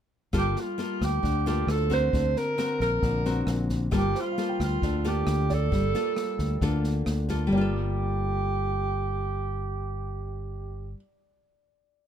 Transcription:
0.33 G1 G3 A#3 F4 A4, kick, cross-stick, snare
0.38 G4
0.56 F4, snare
0.78 A#3 F4 A4, snare
1.01 D2 G4, kick, cross-stick, snare
1.23 D2 D3, kick, snare
1.46 A#3 F4 G4 A4, snare
1.67 D2 A4, cross-stick, snare
1.90 C4 F#4 A#4 C5, kick, snare
2.13 D2 D3, kick, snare
2.36 A#4, snare
2.58 C4 F#4 A#4, cross-stick, snare
2.80 A#1 A#4, kick, snare
3.02 A#1 D3, kick, snare
3.25 C4 F#4 A#4, snare
3.47 A#1, cross-stick, snare
3.69 kick, snare
3.91 G1 G3 A#3 F4 A4, kick, cross-stick, snare
3.97 G4
4.15 C5, snare
4.20 F4
4.32 F5
4.38 A#3 F4 A4, snare
4.49 G5
4.60 D2 F4, kick, cross-stick, snare
4.82 D2 D3, kick, snare
5.05 A#3 F4 G4 A4, snare
5.27 D2, cross-stick, snare
5.49 D5, kick, snare
5.54 A4
5.72 G1 G3, kick, snare
5.94 A#3 F4 A4, snare
6.16 cross-stick, snare
6.39 D2, kick, snare
6.61 D2 D3 A#3 F4 A4, kick, snare
6.84 snare
7.06 D2, cross-stick, snare
7.29 A#3 F4 A4, kick, snare
7.47 G1 G3
7.52 A#3 G4 D5
7.58 F4 A4

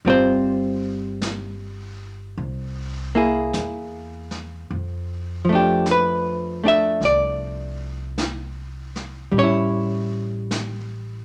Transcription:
0.05 G1 G3 C4 F4 A#4, brush sweep
0.10 C5
1.22 brush sweep, snare, hi-hat pedal
2.37 C2, brush sweep
3.15 A#3 E4 G#4
3.53 E2, brush sweep, snare, hi-hat pedal
4.31 snare
4.70 F2, brush sweep
5.45 F3
5.49 A3 D4
5.55 G4
5.86 brush sweep, snare, hi-hat pedal
5.91 B4
6.64 A3 D4
6.68 E5
7.01 C2, brush sweep, snare
7.05 D5
8.18 brush sweep, snare, hi-hat pedal
8.96 snare
9.32 A1 G3, brush sweep
9.38 C#4 C#5
9.43 E4
10.51 brush sweep, snare, hi-hat pedal

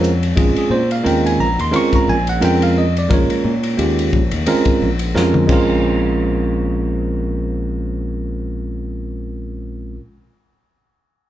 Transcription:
Already playing: F2 G#3 C#4 F4 A#4 C5 C#5
0.04 hi-hat pedal
0.23 ride
0.36 A#1 G#3 C4 C#4 F4 G#4, kick, ride
0.55 G#4, muted fingered electric bass stroke, ride
0.70 A#2 C5
0.91 F5, ride
1.04 D#2 G#3 C4 C#4 F4 A#4 G5, ride
1.26 G#5, ride
1.39 A#1 A#5
1.59 D#2 C6, ride
1.71 G#3 C4 C#4 F4 A#4, ride
1.76 C#6
1.93 A#5, muted fingered electric bass stroke, kick, ride
2.08 A#1 G#5
2.27 F#5, ride
2.40 F2 G#3 C4 C#4 F4 A#4, ride
2.45 G5
2.62 F5, ride
2.78 D#5
2.97 D5, ride
3.09 A#1 G#3 A#3 C#4 F4 A#4, kick, ride
3.13 C#5
3.29 muted fingered electric bass stroke, ride
3.45 A#2
3.63 ride
3.77 D#2 G#3 A#3 C#4 F4 G4, ride
3.99 ride
4.13 A#1, kick
4.31 D#2, ride
4.46 G#3 C4 C#4 F4 A#4, ride
4.65 muted fingered electric bass stroke, kick, ride
4.82 A#1
4.99 ride
5.15 F2 G#3 C4 C#4 F4 A#4, snare
5.34 mid tom
5.47 A#1 G#3 C4 C#4, kick, crash
5.51 F4 A#4

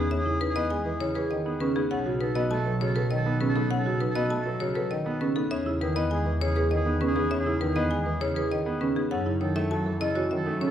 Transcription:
Already playing: E2 B3 D#4 G#4
0.11 C#4 E5
0.19 G#4
0.26 C#3 E4
0.41 D#4 B4
0.50 G#4
0.56 B3 E4 D#5
0.70 G#3 G#5
0.82 E3 G#4
0.86 B4
1.00 C#3 E4 C#5
1.13 E3 G#4 B4
1.31 D#3 D#5
1.44 B3 D#4 G#4
1.60 C#3 C#4 B4
1.76 B3 D#4 G#4
1.91 B1 C#4 A4 F#5
2.06 C#3 F#4
2.21 D#4 A4 B4
2.35 B3 F#4 D#5
2.51 A3 A4 A5
2.66 F#3 B4
2.81 C#3 F#4 C#5
2.85 A4
2.96 F#3 A4 B4
3.11 D#3 D#5
3.17 A4
3.26 B3 D#4
3.40 C#3 C#4 B4
3.48 A4
3.56 B3 D#4 A4
3.71 C#4 F#5
3.79 A4
3.86 C#3 F#4
4.01 D#4 B4
4.10 A4
4.15 B3 F#4 D#5
4.30 A3 A5
4.42 A4
4.46 F#3 B4
4.60 C#3 F#4 C#5
4.73 F#3 A4 B4
4.91 D#3 D#5
5.05 B3 D#4 A4
5.21 C#3 C#4 B4
5.36 B3 D#4 A4
5.51 E2 C#4 G#4 E5
5.66 C#3 E4
5.81 D#3 D#4 G#4 B4
5.96 B3 E4 D#5
6.11 G#3 G#4 G#5
6.26 E3 B4
6.41 C#3 E4 G#4 C#5
6.56 E3 G#4 B4
6.71 D#3 D#5
6.76 G#4
6.86 B3 D#4
7.01 C#3 C#4 B4
7.08 G#4
7.16 B3 G#4
7.31 C#4 E5
7.39 G#4
7.46 C#3 E4
7.61 D#3 D#4 B4
7.70 G#4
7.76 B3 E4 D#5
7.91 G#3 G#5
8.02 E3 G#4 B4
8.21 C#3 E4 C#5
8.34 E3 G#4 B4
8.51 D#3 D#5
8.65 B3 D#4 G#4
8.81 C#3 C#4 B4
8.96 B3 D#4 G#4
9.11 F#2 C#4 A4 F#5
9.26 C#3 E4
9.41 D#3 D#4 A4 C#5
9.56 A3 E4 E5
9.71 F#3 A4 A5
9.86 E3 A4
10.01 C#3 E4 A4 D#5
10.15 E3 F#4 C#5
10.31 D#3 E5
10.36 A4
10.46 A3 D#4
10.61 C#3 C#4 C#5
10.67 A4

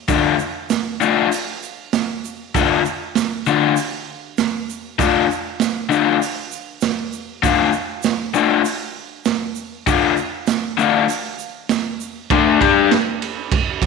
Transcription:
0.08 D3 A3 D4 F4, kick, open hi-hat, shaker
0.39 shaker
0.70 snare, open hi-hat, shaker
1.01 D3 A3 D4 F4, shaker
1.32 open hi-hat, shaker
1.63 shaker
1.93 snare, open hi-hat, shaker
2.25 shaker
2.54 D3 A3 D4 F4, kick, open hi-hat, shaker
2.86 shaker
3.15 snare, open hi-hat, shaker
3.46 D3 A3 D4 F4, shaker
3.76 open hi-hat, shaker
4.38 snare, open hi-hat, shaker
4.70 shaker
4.99 D3 A3 D4 F4, kick, open hi-hat, shaker
5.31 shaker
5.60 snare, open hi-hat, shaker
5.89 D3 A3 D4 F4, shaker
6.22 open hi-hat, shaker
6.52 shaker
6.81 snare, open hi-hat, shaker
7.13 shaker
7.42 D3 A3 D4 F4, kick, open hi-hat, shaker
7.73 shaker
8.03 snare, open hi-hat, shaker
8.34 D3 A3 D4 F4, shaker
8.65 open hi-hat, shaker
9.25 snare, open hi-hat, shaker
9.55 shaker
9.87 D3 A3 D4 F4, kick, open hi-hat, shaker
10.17 shaker
10.47 snare, open hi-hat, shaker
10.77 D3 A3 D4 F4, shaker
11.08 open hi-hat, shaker
11.39 shaker
11.69 snare, open hi-hat, shaker
12.00 shaker
12.30 D3 A3 D4, kick, ride
12.61 G3 D4 G4, kick, ride
12.91 snare, ride
13.22 ride
13.52 kick, ride
13.82 kick, ride

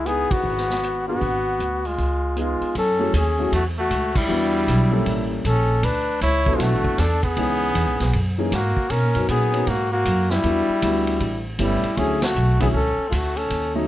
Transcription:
Already playing: C#2
0.05 B3 D#4 E4 G#4, closed hi-hat
0.31 B3 F#4, kick, ride
0.43 G#1
0.57 snare
0.70 snare
0.83 closed hi-hat
1.07 B3 D4 F#4 G#4
1.21 G#1, kick, open hi-hat
1.59 D2, closed hi-hat
1.85 G#3 F4, open hi-hat
1.98 C#2, kick, open hi-hat
2.36 G#3 B3 D#4 F4 G#4, closed hi-hat
2.61 muted upright bass stroke, open hi-hat
2.75 F#2 C#4 A4, kick, ride
2.99 F#3 A3 C#4 E4 G#4
3.13 D#2 C#4 G#4, kick, hi-hat pedal, ride
3.38 F#3 A3 C#4 E4 F#4
3.52 E2 A3 F#4, kick, ride
3.78 A3 F#4
3.90 C#2, kick, hi-hat pedal, ride
4.16 G3 E4, kick, crash
4.28 E2 G3 B3 D4 E4 F#4
4.68 B1, kick, hi-hat pedal, ride
4.91 G3 A#3 C#4 E4 A4
5.06 A1, kick, ride
5.44 A#1 C#4 A4, kick, hi-hat pedal, ride
5.83 D2 D4 B4, kick, ride
6.21 C#2 E4 C#5, kick, hi-hat pedal, ride
6.46 F#3 B3 D4 E4 A4, kick
6.55 G#3 F4
6.59 B1 A3 F#4, kick, snare, ride
6.71 A1
6.84 F#1, kick
6.98 E2 D4 A4, kick, snare, hi-hat pedal, ride
7.23 B3 G#4, kick, ride
7.37 C#2 E3 B3 C#4 D#4 G#4, kick, ride
7.75 E2, kick, hi-hat pedal, ride
7.87 C#2
8.00 B1, snare, ride
8.13 F#2, kick, ride
8.38 E3 A#3 C#4 D#4 G#4
8.52 G#2 A#3 F#4, kick, snare, hi-hat pedal, ride
8.76 muted upright bass stroke, kick
8.90 B2 C#4 A#4, kick, ride
9.03 A#2
9.15 F#2 F#3 B3 C#4 D#4 A#4, ride
9.28 A#2 B3 G#4, kick, hi-hat pedal, ride
9.53 F#3 B3 C#4 D#4 A#4, ride
9.67 G#2 A#3 F#4, kick, ride
9.92 A#3 F#4
10.05 F#2, kick, hi-hat pedal, ride
10.30 G3 E4, snare
10.43 E2 G3 B3 D4 E4 F#4, kick, ride
10.68 muted upright bass stroke
10.82 D2 G3 B3 D4 E4 F#4, kick, hi-hat pedal, ride
11.07 ride
11.20 A1, kick, ride
11.59 G1 G3 A3 B3 C#4 E4, kick, hi-hat pedal, ride
11.83 muted upright bass stroke, ride
11.97 D2 D3 F#3 A3 C#4 E4 G#4, kick, ride
12.22 A3 F#4, snare, ride
12.35 B1, hi-hat pedal
12.60 D3 F#3 A3 B3 C#4 E4 G#4, kick, ride
12.73 C#2 C#4 A4, kick
12.98 muted upright bass stroke
13.08 D2 G#3 A3 F4, kick, hi-hat pedal, ride
13.13 F#4
13.36 C#4 A4, ride
13.50 D#2, kick, ride
13.74 D#3 F#3 A3 C#4 D#4

